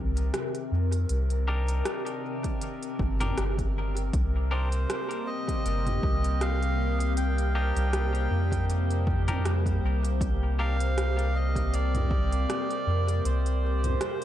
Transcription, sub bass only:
0.00 0.31 C2 medium
0.72 1.06 F2 loud
1.10 1.82 C2 loud
2.99 3.33 G1 loud
3.38 4.10 G1 medium
4.13 4.86 C2 loud
5.65 5.99 G1 medium
6.03 7.72 C2 medium
7.76 8.28 C2 medium
8.31 9.80 F2 loud
9.83 12.46 C2 medium
12.87 13.21 F2 loud
13.25 13.98 C2 loud

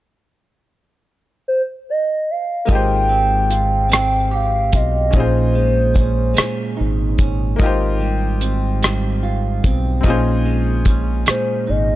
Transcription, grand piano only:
2.65 5.08 A#3 medium
2.65 5.09 D#4 soft
2.70 5.11 F4 soft
2.70 5.12 G4 medium
2.75 5.13 C5 medium
5.11 7.53 C#4 medium
5.11 7.55 D#4 medium
5.16 7.56 F4 soft
5.16 7.57 G#4 soft
5.20 7.58 C5 medium
7.56 9.99 A#3 medium
7.56 10.00 D#4 medium
7.61 10.01 F4 medium
7.61 10.02 G4 medium
7.66 10.03 C5 medium
10.01 10.09 C4 medium
10.01 11.96 D#4 medium
10.05 11.96 C#4 medium
10.05 11.96 F4 medium
10.05 11.96 G#4 medium
10.10 11.96 C5 medium

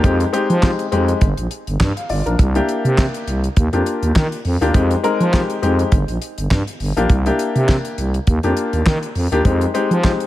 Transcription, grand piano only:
0.03 0.25 G#3 medium
0.03 0.26 C4 medium
0.03 0.26 D#4 medium
0.03 0.26 G4 loud
0.33 0.55 G#3 medium
0.33 0.55 C4 medium
0.33 0.55 D#4 medium
0.33 0.55 G4 loud
0.62 0.84 G#3 medium
0.62 0.85 C4 medium
0.62 0.85 D#4 medium
0.62 0.85 G4 medium
0.92 1.21 G#3 medium
0.92 1.21 C4 medium
0.92 1.22 D#4 medium
0.92 1.22 G4 medium
1.97 2.09 F5 medium
2.10 2.26 F4 medium
2.10 2.25 D5 medium
2.26 2.54 D4 medium
2.26 2.54 A#4 medium
2.55 3.38 A#3 medium
2.55 3.38 D4 medium
2.55 3.39 E4 medium
2.55 3.39 G4 loud
3.73 4.35 A#3 medium
3.73 4.35 D4 medium
3.73 4.35 F4 medium
3.73 4.36 G4 medium
4.61 4.71 A#3 medium
4.61 4.71 D4 medium
4.61 4.71 F4 medium
4.61 4.71 G4 loud
4.74 4.96 G#3 medium
4.74 4.96 C4 medium
4.74 4.96 D#4 medium
4.74 4.97 G4 loud
5.03 5.26 G#3 loud
5.03 5.26 C4 medium
5.03 5.26 D#4 medium
5.03 5.26 A#4 loud
5.33 5.55 G#3 medium
5.33 5.55 C4 medium
5.33 5.55 D#4 medium
5.33 5.55 G4 medium
5.62 5.92 G#3 medium
5.62 5.92 C4 medium
5.62 5.92 D#4 medium
5.62 5.92 G4 medium
6.96 7.10 A#3 loud
6.96 7.10 D4 medium
6.96 7.10 F4 medium
6.96 7.10 G4 loud
7.26 8.09 A#3 medium
7.26 8.09 D4 medium
7.26 8.09 E4 medium
7.26 8.09 G4 loud
8.44 9.06 A#3 medium
8.44 9.06 D4 medium
8.44 9.06 F4 medium
8.44 9.06 G4 medium
9.32 9.41 A#3 loud
9.32 9.41 D4 medium
9.32 9.41 F4 medium
9.32 9.42 G4 loud
9.45 9.67 G#3 medium
9.45 9.67 C4 medium
9.45 9.67 D#4 medium
9.45 9.67 G4 medium
9.74 9.96 G#3 medium
9.74 9.96 C4 medium
9.74 9.96 D#4 medium
9.74 9.97 G4 loud
10.03 10.26 G#3 medium
10.03 10.26 C4 medium
10.03 10.26 D#4 medium
10.03 10.26 G4 medium

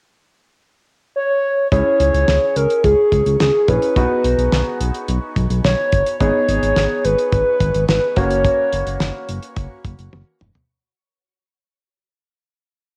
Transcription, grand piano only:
1.72 3.64 C#4 medium
1.72 3.64 E4 medium
1.72 3.64 G#4 medium
3.68 3.96 C#4 soft
3.68 3.96 E4 soft
3.68 3.96 G#4 medium
3.96 6.17 B3 medium
3.96 6.17 D#4 medium
3.96 6.17 F#4 medium
6.20 8.13 B3 medium
6.20 8.13 D#4 medium
6.20 8.13 G#4 medium
8.17 10.37 A#3 medium
8.17 10.37 C#4 medium
8.17 10.37 F#4 medium

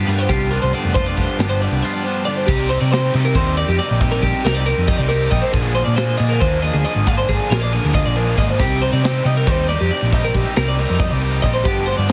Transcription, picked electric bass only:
0.08 0.26 G2 loud
0.29 0.57 C2 loud
0.63 0.72 C2 medium
0.84 1.12 F1 medium
1.18 1.27 F1 medium
1.39 1.67 G1 loud
1.71 1.81 C2 medium
2.48 2.76 C2 loud
2.81 3.09 C3 medium
3.14 3.33 C3 medium
3.35 3.63 D#2 medium
3.68 3.78 F2 loud
3.90 4.18 A#1 medium
4.23 4.32 A#1 medium
4.44 4.72 C2 loud
4.78 4.96 F2 medium
4.99 5.27 C2 loud
5.32 5.41 A#1 loud
5.53 5.81 A#1 loud
5.87 6.15 A#2 medium
6.20 6.38 A#2 medium
6.42 6.69 D#2 medium
6.74 6.83 D2 medium
6.96 7.24 G#1 medium
7.29 7.38 G#1 medium
7.50 7.78 A#1 loud
7.84 8.02 D2 medium
8.06 8.33 A#1 loud
8.38 8.61 G#1 loud
8.60 8.87 C2 loud
8.93 9.20 C3 medium
9.25 9.44 C3 loud
9.47 9.75 D#2 loud
9.81 9.90 F2 medium
10.02 10.30 A#1 medium
10.35 10.44 A#1 medium
10.57 10.85 C2 loud
10.90 11.08 F2 medium
11.12 11.39 C2 loud
11.44 11.65 A#1 loud
11.65 11.93 G1 medium
11.98 12.12 G2 medium

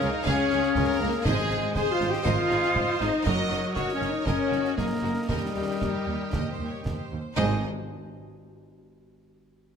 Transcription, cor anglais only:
0.00 0.25 F5 medium
0.28 1.24 F5 loud
1.26 1.75 D#5 medium
1.76 3.23 D#5 loud
3.26 3.75 D#5 medium
3.76 4.25 D#5 medium
4.27 4.76 D#5 medium
4.78 5.28 D#5 medium
5.30 7.08 D#5 medium
7.36 7.57 D#5 medium

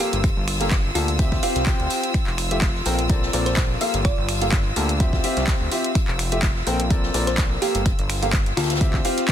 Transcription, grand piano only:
0.00 0.17 A#3 medium
0.00 0.17 G4 medium
0.00 0.17 A4 medium
0.00 0.17 F5 medium
0.61 0.70 A#3 medium
0.61 0.70 G4 medium
0.61 0.70 A4 medium
0.61 0.70 F5 medium
0.95 1.07 A#3 medium
0.95 1.07 G4 medium
0.95 1.07 A4 medium
0.95 1.07 A5 medium
1.19 1.40 C4 medium
1.19 1.40 F4 medium
1.19 1.40 G4 medium
1.19 1.40 E5 medium
1.43 1.60 C4 loud
1.43 1.60 F4 medium
1.43 1.60 G4 medium
1.43 1.60 F5 loud
1.67 2.13 C4 loud
1.67 2.13 F4 medium
1.67 2.13 G4 medium
1.67 2.13 G5 loud
2.51 2.61 A3 medium
2.51 2.61 F4 medium
2.51 2.61 G4 medium
2.51 2.61 E5 medium
2.86 2.97 C4 medium
2.86 2.97 A4 medium
2.86 2.97 A#4 medium
2.86 2.97 G5 medium
3.10 3.31 C4 medium
3.10 3.31 A4 medium
3.10 3.31 A#4 medium
3.10 3.31 D5 medium
3.33 3.78 C4 medium
3.33 3.78 A4 medium
3.33 3.78 A#4 medium
3.33 3.78 D5 loud
3.81 3.98 A#3 medium
3.81 3.98 G4 medium
3.81 3.98 A4 medium
3.81 3.98 F5 medium
4.42 4.51 A#3 medium
4.42 4.51 G4 medium
4.42 4.51 A4 medium
4.42 4.51 F5 medium
4.76 4.88 A#3 medium
4.76 4.88 G4 medium
4.76 4.88 A4 medium
4.76 4.88 A5 medium
5.00 5.21 C4 medium
5.00 5.21 F4 medium
5.00 5.21 G4 medium
5.00 5.21 E5 medium
5.24 5.69 C4 medium
5.24 5.69 F4 medium
5.24 5.69 G4 medium
5.24 5.69 E5 loud
5.71 5.89 C4 medium
5.71 5.89 F4 medium
5.71 5.89 G4 medium
5.71 5.89 E5 medium
6.32 6.42 A3 medium
6.32 6.42 F4 medium
6.32 6.42 G4 medium
6.32 6.42 E5 medium
6.67 6.78 C4 medium
6.67 6.78 A4 medium
6.67 6.78 A#4 medium
6.67 6.78 G5 medium
6.90 7.12 C4 medium
6.90 7.12 A4 medium
6.90 7.12 A#4 medium
6.90 7.12 D5 medium
7.14 7.59 C4 medium
7.14 7.59 A4 medium
7.14 7.59 A#4 medium
7.14 7.59 D5 loud
7.62 7.79 A#3 medium
7.62 7.79 G4 medium
7.62 7.79 A4 medium
7.62 7.79 F5 medium
8.22 8.32 A#3 medium
8.22 8.32 G4 medium
8.22 8.32 A4 medium
8.22 8.32 F5 medium
8.57 8.68 A#3 medium
8.57 8.68 G4 medium
8.57 8.69 A4 medium
8.57 8.68 A5 medium
8.81 9.02 C4 medium
8.81 9.02 F4 medium
8.81 9.02 G4 medium
8.81 9.02 E5 medium
9.05 9.22 C4 loud
9.05 9.22 F4 medium
9.05 9.22 G4 medium
9.05 9.22 F5 loud
9.29 9.32 C4 loud
9.29 9.32 F4 medium
9.29 9.32 G4 medium
9.29 9.32 G5 loud

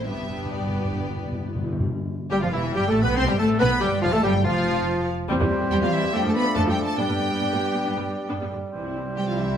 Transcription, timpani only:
0.07 0.13 G2 soft
0.14 0.21 G2 soft
0.22 0.29 G2 soft
0.30 0.36 G2 soft
0.38 0.44 G2 soft
0.45 0.52 G2 medium
0.54 0.60 G2 medium
0.61 0.67 G2 medium
0.69 0.76 G2 medium
0.77 0.84 G2 medium
0.85 0.91 G2 medium
0.92 1.00 G2 medium
1.01 1.07 G2 medium
1.08 1.16 G2 medium
1.17 1.23 G2 medium
1.24 1.31 G2 medium
1.32 1.38 G2 medium
1.40 1.47 G2 medium
1.48 1.55 G2 loud
1.56 1.63 G2 medium
1.64 1.71 G2 loud
1.72 1.79 G2 loud
1.80 1.87 G2 loud

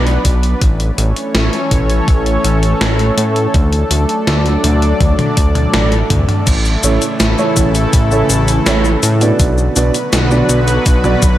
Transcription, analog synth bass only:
0.00 0.18 B1 medium
0.25 0.55 B1 medium
0.62 0.91 A1 loud
0.98 1.13 A1 loud
1.35 1.50 A1 medium
1.71 2.01 A1 medium
2.08 2.38 A1 medium
2.45 2.74 A1 medium
2.81 3.11 A1 medium
3.18 3.47 A2 medium
3.54 3.84 D2 medium
3.91 4.06 D2 medium
4.27 4.57 D2 loud
4.64 4.94 D2 medium
5.01 5.15 D2 medium
5.37 5.67 D2 medium
5.74 6.03 A1 medium
6.10 6.25 D2 loud
6.47 6.77 A1 loud
6.84 6.98 A1 loud
7.20 7.35 A1 medium
7.57 7.86 A1 medium
7.93 8.23 A1 medium
8.30 8.60 A1 medium
8.66 8.96 A1 medium
9.03 9.33 A2 medium
9.40 9.69 B1 medium
9.76 9.91 B1 medium
10.13 10.42 B1 loud
10.49 10.79 B1 loud
10.86 11.16 B1 medium
11.23 11.38 B1 medium

